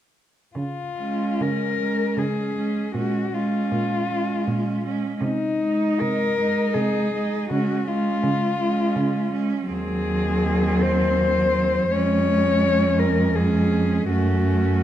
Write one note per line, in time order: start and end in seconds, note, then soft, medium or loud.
0.55 1.29 C#3 soft
0.55 1.43 F4 soft
0.98 1.78 G#3 soft
0.98 1.79 C#4 soft
1.41 2.06 C#3 soft
1.41 2.20 A#4 medium
1.80 2.55 G#3 soft
1.80 2.55 C#4 soft
2.17 2.83 C#3 soft
2.17 2.94 G#4 soft
2.55 2.94 G#3 soft
2.55 2.93 C#4 soft
2.94 3.60 A#2 soft
2.94 3.33 G#3 soft
2.94 3.33 C#4 soft
2.94 3.35 F#4 soft
3.33 4.09 G#3 soft
3.33 4.09 C#4 soft
3.33 4.85 F4 soft
3.72 4.36 A#2 soft
4.11 4.84 G#3 soft
4.11 4.83 C#4 soft
4.48 5.10 A#2 soft
4.85 5.21 G#3 soft
4.85 5.21 C#4 soft
5.20 5.90 C3 soft
5.20 6.01 D#4 medium
5.61 6.38 G#3 soft
5.61 6.39 D#4 soft
6.00 6.65 C3 soft
6.00 6.75 A#4 medium
6.39 7.12 G#3 soft
6.39 7.13 D#4 soft
6.74 7.39 C3 soft
6.74 7.49 G#4 medium
7.14 7.50 G#3 soft
7.14 7.51 D#4 soft
7.50 8.12 C#3 soft
7.50 7.86 G#3 soft
7.50 7.87 C#4 soft
7.50 7.89 F#4 medium
7.87 8.58 G#3 soft
7.87 8.58 C#4 soft
7.87 9.33 F4 medium
8.23 8.85 C#3 soft
8.59 9.32 G#3 soft
8.59 9.32 C#4 soft
8.96 9.59 C#3 soft
9.32 9.70 G#3 soft
9.32 9.70 C#4 soft
9.70 11.89 D#2 soft
9.70 11.88 F#3 soft
9.70 11.89 C4 soft
9.70 10.83 G#4 medium
10.82 11.92 C5 medium
11.91 14.07 F2 soft
11.91 13.34 G#3 medium
11.91 13.35 C#4 soft
11.91 13.00 C#5 medium
12.99 13.37 A#4 medium
13.35 14.10 G#3 soft
13.35 14.10 C#4 soft
13.35 14.09 G#4 soft
14.10 14.83 F#2 soft
14.10 14.83 A3 soft
14.10 14.83 C#4 soft
14.10 14.83 F#4 medium